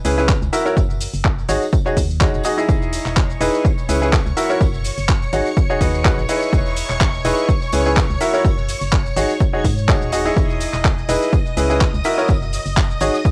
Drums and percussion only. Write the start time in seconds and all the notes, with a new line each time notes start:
0.05 open hi-hat, tambourine, shaker
0.18 tambourine, shaker
0.28 kick, clap, tambourine, shaker
0.42 tambourine, shaker
0.53 open hi-hat, tambourine, shaker
0.66 tambourine, shaker
0.77 kick, tambourine, shaker
0.90 tambourine, shaker
1.01 open hi-hat, tambourine, shaker
1.13 open hi-hat, tambourine, shaker
1.25 kick, clap, tambourine, shaker
1.38 tambourine, shaker
1.49 open hi-hat, tambourine, shaker
1.61 tambourine, shaker
1.72 kick, tambourine, shaker
1.86 tambourine, shaker
1.97 kick, open hi-hat, tambourine, shaker
2.10 tambourine, shaker
2.21 kick, clap, tambourine, shaker
2.34 tambourine, shaker
2.43 open hi-hat, tambourine, shaker
2.58 tambourine, shaker
2.69 kick, tambourine, shaker
2.82 tambourine, shaker
2.93 open hi-hat, tambourine, shaker
3.06 clap, shaker
3.16 kick, clap, tambourine, shaker
3.29 tambourine, shaker
3.41 open hi-hat, tambourine, shaker
3.54 shaker
3.65 kick, tambourine, shaker
3.77 tambourine, shaker
3.89 open hi-hat, tambourine, shaker
4.01 tambourine, shaker
4.13 kick, clap, tambourine, shaker
4.26 tambourine, shaker
4.37 open hi-hat, tambourine, shaker
4.50 tambourine, shaker
4.60 kick, tambourine, shaker
4.74 tambourine, shaker
4.84 open hi-hat, tambourine, shaker
4.98 open hi-hat, tambourine, shaker
5.09 kick, clap, tambourine, shaker
5.22 tambourine, shaker
5.33 open hi-hat, tambourine, shaker
5.46 tambourine, shaker
5.57 kick, tambourine, shaker
5.70 tambourine, shaker
5.80 kick, open hi-hat, tambourine, shaker
5.94 tambourine, shaker
6.04 kick, clap, tambourine, shaker
6.18 tambourine, shaker
6.29 open hi-hat, tambourine, shaker
6.42 tambourine, shaker
6.53 kick, tambourine, shaker
6.66 tambourine, shaker
6.76 open hi-hat, tambourine, shaker
6.90 clap, tambourine, shaker
7.01 kick, clap, tambourine, shaker
7.14 tambourine, shaker
7.25 open hi-hat, tambourine, shaker
7.38 tambourine, shaker
7.49 kick, tambourine, shaker
7.61 tambourine, shaker
7.72 open hi-hat, tambourine, shaker
7.85 tambourine, shaker
7.97 kick, clap, tambourine, shaker
8.10 tambourine, shaker
8.20 open hi-hat, tambourine, shaker
8.34 tambourine, shaker
8.45 kick, tambourine, shaker
8.58 tambourine, shaker
8.69 open hi-hat, tambourine, shaker
8.82 open hi-hat, tambourine, shaker
8.92 kick, clap, tambourine, shaker
9.06 tambourine, shaker
9.17 open hi-hat, tambourine, shaker
9.30 tambourine, shaker
9.40 kick, tambourine, shaker
9.53 tambourine, shaker
9.65 kick, open hi-hat, tambourine, shaker
9.78 tambourine, shaker
9.89 kick, clap, tambourine, shaker
10.02 tambourine, shaker
10.12 open hi-hat, tambourine, shaker
10.26 tambourine, shaker
10.37 kick, tambourine, shaker
10.49 tambourine, shaker
10.61 open hi-hat, tambourine, shaker
10.74 clap, tambourine, shaker
10.84 kick, clap, tambourine, shaker
10.98 tambourine, shaker
11.09 open hi-hat, tambourine, shaker
11.22 tambourine, shaker
11.33 kick, tambourine, shaker
11.45 tambourine, shaker
11.57 open hi-hat, tambourine, shaker
11.70 tambourine, shaker
11.81 kick, clap, tambourine, shaker
11.94 tambourine, shaker
12.04 open hi-hat, tambourine, shaker
12.18 tambourine, shaker
12.28 kick, tambourine, shaker
12.42 tambourine, shaker
12.53 open hi-hat, tambourine, shaker
12.66 open hi-hat, tambourine, shaker
12.76 kick, clap, tambourine, shaker
12.90 tambourine, shaker
13.00 open hi-hat, tambourine, shaker
13.14 tambourine, shaker
13.25 kick, tambourine, shaker